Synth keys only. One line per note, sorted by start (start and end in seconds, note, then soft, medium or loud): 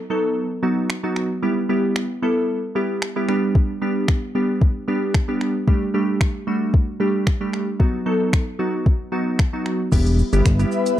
0.10 0.46 F#3 medium
0.10 0.46 B3 medium
0.10 0.46 D#4 medium
0.10 0.46 A4 medium
0.63 0.89 F#3 medium
0.63 0.89 B3 medium
0.63 0.90 D#4 medium
0.63 0.90 F#4 medium
1.03 1.30 F#3 medium
1.03 1.30 B3 medium
1.03 1.30 D#4 medium
1.03 1.30 F#4 medium
1.43 1.61 G3 medium
1.43 1.61 B3 medium
1.43 1.61 E4 medium
1.43 1.61 G4 medium
1.69 2.05 G3 medium
1.69 2.05 B3 medium
1.69 2.05 E4 medium
1.69 2.05 G4 medium
2.22 2.58 G3 medium
2.22 2.58 B3 medium
2.22 2.58 E4 medium
2.22 2.58 A4 medium
2.75 3.02 G3 medium
2.75 3.02 B3 medium
2.75 3.02 E4 medium
2.75 3.02 G4 medium
3.16 3.27 G3 medium
3.16 3.27 B3 medium
3.16 3.29 E4 medium
3.16 3.28 G4 medium
3.28 3.72 G3 medium
3.28 3.72 B3 medium
3.28 3.72 D4 medium
3.28 3.72 G4 loud
3.82 4.18 G3 medium
3.82 4.18 B3 medium
3.82 4.18 D4 medium
3.82 4.18 G4 medium
4.35 4.71 G3 medium
4.35 4.71 B3 medium
4.35 4.71 D4 medium
4.35 4.71 G4 medium
4.88 5.14 G3 medium
4.88 5.14 B3 medium
4.88 5.15 D4 medium
4.88 5.15 G4 medium
5.28 5.55 G3 medium
5.28 5.55 B3 medium
5.28 5.55 D4 medium
5.28 5.55 G4 medium
5.67 5.86 G3 medium
5.67 5.86 A3 medium
5.67 5.86 D4 medium
5.67 5.86 G4 medium
5.94 6.30 G3 medium
5.94 6.30 A3 medium
5.94 6.30 D4 medium
5.94 6.30 G4 medium
6.47 6.83 G3 medium
6.47 6.83 A3 medium
6.47 6.83 D4 medium
6.47 6.83 F#4 medium
7.00 7.27 G3 medium
7.00 7.27 A3 medium
7.00 7.27 D4 medium
7.00 7.27 G4 medium
7.41 7.67 G3 medium
7.41 7.67 A3 medium
7.41 7.67 D4 medium
7.41 7.67 G4 medium
7.80 7.98 F#3 medium
7.80 7.98 B3 medium
7.80 7.98 D#4 medium
7.80 7.98 F#4 medium
8.06 8.42 F#3 medium
8.06 8.42 B3 medium
8.06 8.42 D#4 medium
8.06 8.42 A4 medium
8.59 8.95 F#3 medium
8.59 8.95 B3 medium
8.59 8.95 D#4 medium
8.59 8.95 F#4 medium
9.12 9.39 F#3 medium
9.12 9.39 B3 medium
9.12 9.39 D#4 medium
9.12 9.39 F#4 medium
9.53 9.80 F#3 medium
9.53 9.80 B3 medium
9.53 9.80 D#4 medium
9.53 9.80 F#4 medium
9.92 10.19 G3 medium
9.92 10.19 B3 medium
9.92 10.19 E4 medium
9.92 10.19 G4 medium
10.33 10.50 G3 medium
10.33 10.50 B3 medium
10.33 10.50 E4 medium
10.33 10.50 G4 medium
10.59 11.00 G3 medium
10.59 11.00 B3 medium
10.59 11.00 E4 medium
10.59 11.00 G4 medium